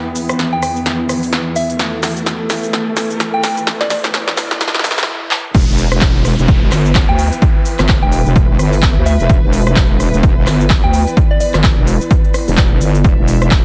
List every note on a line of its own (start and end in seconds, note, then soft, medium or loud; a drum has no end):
0.00 5.04 E2 medium
0.00 5.04 E3 medium
0.00 1.76 B3 medium
0.00 5.08 E4 medium
0.00 5.08 B4 medium
0.00 5.08 E5 medium
0.00 riser medium
0.16 open hi-hat loud
0.16 shaker medium
0.29 cross-stick medium
0.29 closed hi-hat medium
0.29 shaker soft
0.39 snare medium
0.39 closed hi-hat medium
0.39 shaker soft
0.53 0.59 G5 medium
0.62 0.71 G5 medium
0.62 cross-stick medium
0.62 open hi-hat loud
0.62 shaker medium
0.76 shaker soft
0.86 snare medium
0.86 closed hi-hat medium
0.86 shaker soft
1.09 cross-stick medium
1.09 open hi-hat loud
1.09 shaker medium
1.23 open hi-hat medium
1.23 shaker soft
1.33 snare medium
1.33 closed hi-hat medium
1.33 shaker soft
1.56 1.93 E5 medium
1.56 open hi-hat loud
1.56 shaker medium
1.70 closed hi-hat medium
1.70 shaker soft
1.79 5.04 A3 medium
1.79 snare medium
1.79 closed hi-hat medium
1.79 shaker soft
2.03 snare medium
2.03 open hi-hat loud
2.03 shaker medium
2.17 closed hi-hat medium
2.17 shaker soft
2.26 snare medium
2.26 closed hi-hat medium
2.26 shaker soft
2.50 snare medium
2.50 open hi-hat loud
2.50 shaker medium
2.64 shaker soft
2.73 snare medium
2.73 closed hi-hat medium
2.73 shaker soft
2.97 snare medium
2.97 open hi-hat loud
2.97 shaker medium
3.10 shaker soft
3.20 snare medium
3.20 closed hi-hat medium
3.20 shaker soft
3.34 3.40 G5 medium
3.44 snare medium
3.44 open hi-hat loud
3.44 shaker medium
3.57 closed hi-hat soft
3.57 shaker soft
3.67 snare medium
3.67 closed hi-hat medium
3.67 shaker soft
3.81 3.87 D5 medium
3.81 snare medium
3.81 closed hi-hat soft
3.90 3.99 D5 medium
3.90 snare loud
3.90 open hi-hat loud
3.90 shaker medium
4.04 snare medium
4.04 closed hi-hat medium
4.04 shaker soft
4.14 snare medium
4.14 closed hi-hat medium
4.14 shaker soft
4.28 snare medium
4.37 snare loud
4.37 open hi-hat loud
4.37 shaker medium
4.51 snare medium
4.51 shaker soft
4.61 snare loud
4.61 closed hi-hat medium
4.61 shaker soft
4.68 snare medium
4.75 snare medium
4.75 closed hi-hat soft
4.79 snare medium
4.84 snare loud
4.84 open hi-hat loud
4.84 shaker medium
4.91 snare medium
4.98 snare medium
4.98 open hi-hat medium
4.98 shaker soft
5.03 snare loud
5.31 clap medium
5.54 5.66 E1 loud
5.54 13.65 E3 medium
5.54 13.65 B3 medium
5.54 13.65 E4 medium
5.54 13.03 B4 medium
5.54 kick loud
5.54 closed hi-hat medium
5.54 crash loud
5.54 downlifter medium
5.54 shaker soft
5.65 6.00 E1 loud
5.65 13.65 B4 medium
5.78 open hi-hat loud
5.78 shaker medium
5.92 cross-stick medium
5.92 closed hi-hat medium
5.92 shaker soft
6.01 6.36 E1 loud
6.01 kick loud
6.01 clap loud
6.01 closed hi-hat medium
6.01 shaker soft
6.25 cross-stick medium
6.25 open hi-hat loud
6.25 shaker medium
6.39 6.70 E1 loud
6.39 shaker soft
6.48 kick loud
6.48 closed hi-hat medium
6.48 shaker soft
6.66 10.43 E5 medium
6.72 7.07 G1 loud
6.72 cross-stick medium
6.72 clap soft
6.72 open hi-hat loud
6.72 shaker medium
6.86 shaker soft
6.95 kick loud
6.95 clap loud
6.95 closed hi-hat medium
6.95 shaker soft
7.09 7.30 D2 loud
7.09 7.15 G5 medium
7.19 7.27 G5 medium
7.19 open hi-hat loud
7.19 shaker medium
7.32 closed hi-hat medium
7.32 shaker soft
7.42 kick loud
7.42 closed hi-hat medium
7.42 shaker soft
7.65 open hi-hat loud
7.65 shaker medium
7.79 8.00 G1 loud
7.79 cross-stick medium
7.79 clap soft
7.79 closed hi-hat medium
7.79 shaker soft
7.89 kick loud
7.89 clap loud
7.89 closed hi-hat medium
7.89 shaker soft
8.03 8.24 E1 medium
8.03 8.09 G5 medium
8.12 8.21 G5 medium
8.12 open hi-hat loud
8.12 shaker medium
8.26 8.58 E1 loud
8.26 shaker soft
8.36 kick loud
8.36 closed hi-hat medium
8.36 shaker soft
8.59 8.94 G1 loud
8.59 cross-stick medium
8.59 open hi-hat loud
8.59 shaker medium
8.73 open hi-hat medium
8.73 shaker soft
8.82 kick loud
8.82 clap loud
8.82 closed hi-hat medium
8.82 shaker soft
8.96 9.18 D2 loud
9.06 9.43 E5 medium
9.06 open hi-hat loud
9.06 shaker medium
9.20 9.28 E1 loud
9.20 closed hi-hat medium
9.20 shaker soft
9.30 9.41 E1 loud
9.30 kick loud
9.30 closed hi-hat medium
9.30 shaker soft
9.43 9.75 E1 loud
9.53 open hi-hat loud
9.53 shaker medium
9.67 cross-stick medium
9.67 closed hi-hat medium
9.67 shaker soft
9.76 10.11 E1 loud
9.76 kick loud
9.76 clap loud
9.76 closed hi-hat medium
9.76 shaker soft
10.00 cross-stick medium
10.00 open hi-hat loud
10.00 shaker medium
10.14 10.45 E1 loud
10.14 shaker soft
10.23 kick loud
10.23 closed hi-hat medium
10.23 shaker soft
10.41 13.65 D5 medium
10.47 10.82 G1 loud
10.47 cross-stick medium
10.47 clap soft
10.47 open hi-hat loud
10.47 shaker medium
10.61 shaker soft
10.70 kick loud
10.70 clap loud
10.70 closed hi-hat medium
10.70 shaker soft
10.84 11.05 D2 loud
10.84 10.90 G5 medium
10.94 11.02 G5 medium
10.94 open hi-hat loud
10.94 shaker medium
11.07 closed hi-hat medium
11.07 shaker soft
11.17 kick loud
11.17 closed hi-hat medium
11.17 shaker soft
11.31 11.37 D5 medium
11.40 11.49 D5 medium
11.40 open hi-hat loud
11.40 shaker medium
11.54 11.75 G1 medium
11.54 cross-stick medium
11.54 clap soft
11.54 closed hi-hat medium
11.54 shaker soft
11.64 kick loud
11.64 clap loud
11.64 closed hi-hat medium
11.64 shaker soft
11.78 11.99 E1 medium
11.87 open hi-hat loud
11.87 shaker medium
12.01 shaker soft
12.11 kick loud
12.11 closed hi-hat medium
12.11 shaker soft
12.25 closed hi-hat soft
12.34 cross-stick medium
12.34 open hi-hat loud
12.34 shaker medium
12.48 12.80 E1 medium
12.48 open hi-hat medium
12.48 shaker soft
12.57 kick loud
12.57 clap loud
12.57 closed hi-hat medium
12.57 shaker soft
12.81 13.03 G1 medium
12.81 open hi-hat loud
12.81 shaker medium
12.95 closed hi-hat soft
12.95 shaker soft
13.04 13.16 E1 loud
13.04 13.65 E5 medium
13.04 kick loud
13.04 closed hi-hat medium
13.04 shaker soft
13.18 13.50 E1 loud
13.28 open hi-hat loud
13.28 shaker medium
13.42 cross-stick medium
13.42 closed hi-hat medium
13.42 shaker soft
13.51 13.65 E1 loud
13.51 kick loud
13.51 clap loud
13.51 closed hi-hat medium
13.51 shaker soft